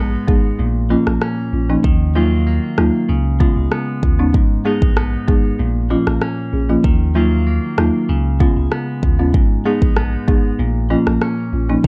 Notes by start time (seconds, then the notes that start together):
Already playing: A#1 G#2 G#3 B3 D#4
0.28 G#1 G#3 B3 D#4 G#4, kick
0.59 A#1 A#2
0.90 F3 A#3 C#4 F4
1.07 A#1, cross-stick
1.22 C#4, cross-stick
1.53 A#1 C#4 F4
1.70 F3 A#3 C#4 D#4
1.84 D#2 D#3, kick
2.15 F#3 A#3 D#4 F4
2.47 A#3
2.78 D#2 F#3 A#3 D#4 F4, cross-stick
3.09 C#2 C#3
3.40 G#3 B3 C#4 F4, kick
3.57 C#2
3.72 B3, cross-stick
4.03 D#2 C#4 F4, kick
4.19 G#3 B3 C#4 D#4
4.34 G#1 G#2, kick
4.65 G#3 B3 D#4 G#4
4.82 A#1, kick
4.97 B3, cross-stick
5.28 G#1 G#3 B3 D#4 G#4, kick
5.59 A#1 A#2
5.90 F3 A#3 C#4 F4
6.07 A#1, cross-stick
6.22 C#4, cross-stick
6.53 A#1 C#4 G#4
6.69 F3 A#3 C#4 F4
6.84 D#2 D#3, kick
7.15 F#3 A#3 D#4 F4
7.47 A#3
7.78 D#2 F#3 A#3 D#4 F4, cross-stick
8.09 C#2 C#3
8.40 G#3 B3 C#4 F4, kick
8.57 C#2
8.72 B3, cross-stick
9.03 D#2 C#4 F4, kick
9.19 G#3 B3 C#4 F4
9.34 G#1 G#2, kick
9.65 G#3 B3 D#4 G#4
9.82 A#1, kick
9.97 B3, cross-stick
10.28 G#1 G#3 B3 D#4 G#4, kick
10.59 A#1 A#2
10.90 F3 A#3 C#4 F4
11.07 A#1, cross-stick
11.22 C#4, cross-stick
11.53 A#1 C#4 F4
11.69 F3 A#3 C#4 D#4